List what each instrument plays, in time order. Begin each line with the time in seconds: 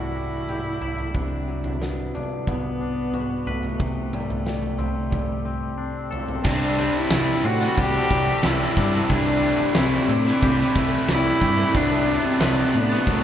Already playing: fingered electric bass C2, clean electric guitar C3 E3 G3 A3, cello E4
0.16 clean electric guitar G3
0.49 clean electric guitar G4, mid tom
0.81 clean electric guitar E4, floor tom
0.98 floor tom
1.15 fingered electric bass C2, clean electric guitar C3, cello D4, kick, floor tom
1.48 clean electric guitar F#3
1.64 floor tom
1.81 clean electric guitar B3, snare
2.15 clean electric guitar D4, floor tom
2.47 cello B3, clean electric guitar B3, kick, floor tom, mid tom
2.81 clean electric guitar D4
3.14 clean electric guitar F#4, mid tom
3.47 cello A3, clean electric guitar B4, floor tom
3.63 floor tom
3.79 fingered electric bass C2, clean electric guitar C3, kick, floor tom
4.13 clean electric guitar G3, mid tom
4.30 floor tom
4.46 clean electric guitar G3, snare
4.62 floor tom
4.79 clean electric guitar C4, floor tom
5.11 clean electric guitar G3, kick, floor tom, mid tom
5.45 clean electric guitar C4
5.78 cello C4, clean electric guitar D4
6.11 clean electric guitar A4, floor tom
6.28 floor tom
6.44 fingered electric bass C2, distorted electric guitar C3 G3 C4 D4, clean electric guitar C3, cello D4, kick, crash
6.61 distorted electric guitar G3 C4 D4
6.77 distorted electric guitar C3 G3 C4 D4, clean electric guitar C4, crash
6.96 cello E4
7.10 fingered electric bass C2, distorted electric guitar C3 G3 C4 D4, snare, crash
7.44 fingered electric bass A2, clean electric guitar C4, cello F#4, muted distorted electric guitar stroke, crash
7.60 distorted electric guitar G3 C4 D4
7.77 fingered electric bass C2, clean electric guitar D4, cello G4, kick, crash
7.94 distorted electric guitar G3 C4 D4
8.10 fingered electric bass C2, distorted electric guitar C3 G3 C4, clean electric guitar G3, kick, crash
8.14 distorted electric guitar D4
8.43 fingered electric bass C2, distorted electric guitar C3 G3 C4, clean electric guitar C4, cello E4, snare, crash
8.47 distorted electric guitar D4
8.60 distorted electric guitar G3 C4 D4
8.76 fingered electric bass G2, distorted electric guitar C3 G3 C4 D4, clean electric guitar D4, kick, crash
8.93 distorted electric guitar G3 C4 D4
9.09 fingered electric bass C2, distorted electric guitar C3 E3 A3 E4, clean electric guitar C3, cello D4, kick, crash
9.26 distorted electric guitar E3 A3 E4
9.42 distorted electric guitar C3 E3 A3 E4, clean electric guitar G3, crash
9.75 fingered electric bass C2, distorted electric guitar C3 E3 A3 E4, cello C4, clean electric guitar E4, snare, crash
10.08 fingered electric bass A2, clean electric guitar G3, muted distorted electric guitar stroke, crash
10.26 distorted electric guitar E3 A3 E4
10.42 fingered electric bass C2, clean electric guitar G4, kick, crash
10.58 distorted electric guitar A3 E4
10.63 distorted electric guitar E3
10.75 fingered electric bass C2, distorted electric guitar C3 E3 A3 E4, clean electric guitar A3, kick, crash
11.08 fingered electric bass C2, distorted electric guitar C3 E3 A3 E4, clean electric guitar G3, snare, crash
11.12 cello E4
11.25 distorted electric guitar E3 A3 E4
11.41 fingered electric bass G2, distorted electric guitar C3 E3 A3 E4, clean electric guitar G4, kick, crash
11.57 distorted electric guitar A3 E4
11.62 distorted electric guitar E3
11.75 fingered electric bass C2, distorted electric guitar C3 F#3 B3 D4, clean electric guitar C3, cello D4, kick, crash
11.90 distorted electric guitar F#3 B3 D4
12.07 distorted electric guitar C3 F#3 B3 D4, clean electric guitar D4, crash
12.26 cello C4
12.39 fingered electric bass C2, distorted electric guitar C3 F#3 B3 D4, clean electric guitar B4, snare, crash
12.74 fingered electric bass A2, cello B3, clean electric guitar D4, muted distorted electric guitar stroke, crash
12.89 distorted electric guitar F#3 B3 D4
13.07 fingered electric bass C2, cello A3, clean electric guitar F#4, kick, crash